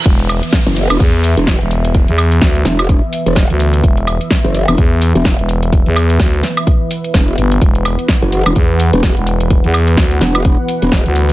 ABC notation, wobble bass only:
X:1
M:4/4
L:1/16
Q:"Swing 16ths" 1/4=127
K:Clyd
V:1 name="Wobble bass" clef=bass
z4 z F,,,2 E,,, z3 E,,,2 z3 | z6 E,,,3 z2 E,,,2 z3 | z4 z F,,,2 E,,, z3 E,,,2 z3 | z12 E,,,2 z2 |
z4 z F,,,2 E,,, z3 E,,,2 z3 | z6 E,,,3 z2 E,,,2 z3 |]